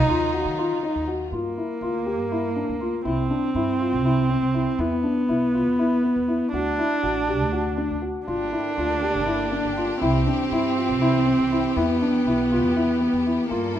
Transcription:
0.00 1.28 D#3 medium
0.00 1.28 F#3 medium
0.00 1.03 D#4 loud
0.00 1.28 F4 medium
0.07 0.43 D#2 medium
0.07 0.26 F4 medium
0.33 0.50 F#4 medium
0.45 0.69 D#3 medium
0.58 0.75 F4 medium
0.83 1.00 D#4 medium
0.95 1.30 D#2 medium
1.07 1.24 F#4 medium
1.32 1.55 G2 medium
1.32 3.01 A#3 medium
1.32 1.49 F4 medium
1.57 1.74 E4 soft
1.81 2.19 D2 medium
1.81 1.99 F4 medium
2.06 2.23 G4 medium
2.19 2.66 G2 medium
2.32 2.48 E4 medium
2.56 2.73 D4 medium
2.69 2.92 D2 medium
2.81 2.98 F4 medium
3.05 3.29 C2 medium
3.05 4.81 C4 medium
3.05 3.22 E4 medium
3.31 3.48 D4 medium
3.55 3.94 G2 medium
3.55 3.72 E4 medium
3.80 3.97 F4 medium
3.93 4.40 C2 medium
4.05 4.22 E4 medium
4.30 4.47 C4 medium
4.41 4.65 C2 medium
4.54 4.71 E4 medium
4.78 5.02 E2 medium
4.78 6.52 B3 medium
4.78 4.96 E4 medium
5.04 5.21 D4 medium
5.28 5.66 B1 medium
5.28 5.46 E4 medium
5.54 5.71 F4 medium
5.66 6.13 E2 medium
5.79 5.96 E4 medium
6.04 6.21 B3 medium
6.16 6.40 E2 medium
6.28 6.45 E4 medium
6.52 6.77 D2 medium
6.52 7.98 D4 medium
6.52 6.71 F#4 medium
6.78 6.95 E4 medium
7.03 7.41 A1 medium
7.03 7.20 F#4 medium
7.28 7.45 G4 medium
7.41 7.88 D2 medium
7.52 7.70 F#4 medium
7.77 7.95 D4 medium
7.90 8.14 D2 medium
8.02 8.19 F#4 medium
8.27 8.51 G1 medium
8.27 10.00 D3 medium
8.27 10.01 A#3 medium
8.27 9.98 D4 medium
8.27 8.44 F4 medium
8.27 13.47 G4 medium
8.52 8.70 E4 medium
8.77 9.16 D2 medium
8.77 8.94 F4 medium
9.02 9.20 G4 medium
9.15 9.62 G1 medium
9.26 9.44 E4 medium
9.52 9.69 D4 medium
9.64 9.88 G1 medium
9.77 9.94 F4 medium
10.01 10.25 C2 medium
10.01 13.47 E3 medium
10.01 11.78 C4 medium
10.01 11.75 C4 medium
10.01 10.19 E4 medium
10.26 10.44 D4 medium
10.51 10.91 G2 medium
10.51 10.69 E4 medium
10.77 10.94 F4 medium
10.89 11.36 C2 medium
11.01 11.19 E4 medium
11.26 11.43 C4 medium
11.38 11.62 C2 medium
11.52 11.69 E4 medium
11.76 12.00 E2 medium
11.76 13.49 B3 medium
11.76 11.94 E4 medium
12.02 12.19 D4 medium
12.25 12.62 B1 medium
12.25 12.44 E4 medium
12.51 12.68 F4 medium
12.62 13.10 E2 medium
12.76 12.93 E4 medium
13.01 13.18 B3 medium
13.13 13.37 E2 medium
13.26 13.43 E4 medium
13.49 13.74 G2 medium
13.49 13.79 G3 medium
13.49 13.79 A#3 medium
13.49 13.68 F4 medium
13.49 13.79 A4 medium
13.75 13.79 E4 medium

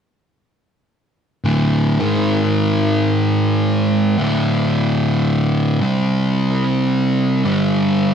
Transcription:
1.44 1.98 D2 medium
1.44 1.98 A2 medium
1.44 1.98 D3 medium
1.99 4.16 G#2 medium
1.99 4.17 D#3 medium
1.99 4.17 G#3 medium
4.18 5.80 D2 medium
4.18 5.80 A2 medium
4.18 5.81 D3 loud
5.80 7.43 C3 medium
5.80 7.43 G3 loud
5.80 7.44 C4 medium
7.45 8.14 G2 medium
7.45 8.14 D3 medium
7.45 8.14 G3 medium

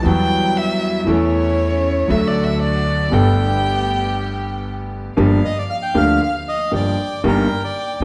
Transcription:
0.02 1.02 E2 medium
0.02 1.03 E2 medium
0.02 1.02 E3 medium
0.02 1.03 F#3 medium
0.02 1.02 G3 soft
0.02 1.03 G3 medium
0.02 1.02 B3 medium
0.02 1.03 E4 medium
0.02 0.59 G5 loud
0.57 0.95 E5 loud
1.06 2.04 E2 medium
1.06 2.05 E2 medium
1.06 2.05 E3 medium
1.06 2.04 A3 medium
1.06 2.05 A3 medium
1.06 2.05 C#4 medium
1.06 2.05 E4 medium
1.06 2.06 A4 medium
1.06 2.12 C#5 medium
2.08 3.07 D2 medium
2.08 3.08 D2 medium
2.08 3.07 D3 medium
2.08 3.06 F#3 medium
2.08 3.07 A3 medium
2.08 3.07 D4 medium
2.08 3.08 D4 medium
2.08 3.08 F#4 medium
2.08 2.29 E5 medium
2.12 3.09 A4 medium
2.28 2.46 D5 medium
2.44 2.61 E5 medium
2.62 3.14 D5 medium
3.10 5.08 G1 medium
3.10 5.08 G2 medium
3.10 5.07 G3 medium
3.10 5.08 A3 medium
3.10 5.07 B3 medium
3.10 5.08 B3 medium
3.10 5.08 D4 medium
3.10 5.08 G4 medium
3.10 4.67 G5 medium
3.14 5.09 A4 medium
5.17 5.40 G1 medium
5.17 5.40 G2 medium
5.17 5.39 F3 medium
5.17 5.40 A#3 medium
5.17 5.40 D4 medium
5.17 5.40 G4 medium
5.17 6.75 F5 medium
5.45 5.58 D#5 medium
5.59 5.64 D5 medium
5.70 5.76 F5 medium
5.83 5.96 G5 medium
5.94 6.17 D2 medium
5.94 6.17 D3 medium
5.94 6.17 F3 medium
5.94 6.17 A#3 medium
5.94 6.17 D4 medium
5.94 6.17 G4 medium
5.94 6.21 F5 medium
6.24 6.35 F5 medium
6.49 6.72 D#5 medium
6.71 6.94 G1 medium
6.71 6.95 G1 medium
6.71 6.94 G2 soft
6.71 6.94 F3 soft
6.71 6.94 A#3 soft
6.71 6.94 D4 soft
6.71 6.94 G4 soft
6.71 7.22 D5 medium
6.71 7.24 G5 medium
7.24 7.46 G1 medium
7.24 7.46 G2 medium
7.24 7.46 D#3 medium
7.24 7.46 G3 medium
7.24 7.46 A#3 medium
7.24 7.46 G4 medium
7.24 8.04 G5 medium
7.28 7.62 A#4 medium
7.64 8.00 D5 medium
8.00 8.04 G1 medium

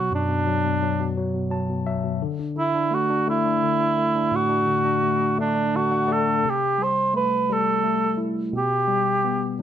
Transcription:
0.00 0.28 B2 medium
0.00 0.46 F#3 soft
0.11 2.18 F#2 medium
0.11 1.14 D4 medium
0.28 0.64 B2 soft
0.46 0.81 F#3 soft
0.65 0.99 B2 soft
0.83 1.16 F#3 soft
1.00 1.34 B2 soft
1.17 1.50 F#3 medium
1.35 1.68 B2 soft
1.51 1.85 F#3 soft
1.51 1.84 A5 medium
1.69 2.02 B2 soft
1.86 2.20 F#3 soft
1.86 2.19 E5 medium
2.03 2.21 B2 soft
2.22 2.55 D3 medium
2.39 2.74 D4 soft
2.56 3.62 D3 soft
2.56 2.95 E4 medium
2.75 3.09 D4 soft
2.91 3.26 A3 soft
2.91 3.28 F#4 medium
3.10 3.44 D4 soft
3.27 3.96 A3 medium
3.27 4.37 E4 medium
3.45 3.78 D4 soft
3.63 4.66 D3 soft
3.79 4.15 D4 soft
3.98 5.02 A3 soft
4.16 4.48 D4 soft
4.31 6.38 A2 medium
4.31 5.39 F#4 medium
4.49 4.84 D4 soft
4.67 5.74 D3 soft
4.85 5.20 D4 soft
5.03 5.37 A3 soft
5.21 5.54 D4 soft
5.38 6.07 A3 medium
5.38 5.77 D4 medium
5.55 5.90 D4 soft
5.74 6.42 D3 soft
5.74 6.13 F#4 medium
5.74 5.90 A5 medium
5.92 6.24 D4 soft
5.92 6.07 F#5 medium
6.08 6.42 A3 soft
6.08 6.51 A4 medium
6.08 6.40 D5 medium
6.25 6.42 D4 soft
6.45 8.50 C3 medium
6.49 6.84 G4 medium
6.78 7.48 G3 soft
6.83 7.15 C5 medium
7.14 7.82 A3 soft
7.14 7.54 B4 medium
7.49 8.50 G3 soft
7.49 8.20 A4 medium
7.83 8.51 A3 soft
8.17 8.52 E4 soft
8.53 9.62 B2 medium
8.57 9.56 G4 medium
8.88 9.62 G3 soft
9.25 9.62 B3 soft

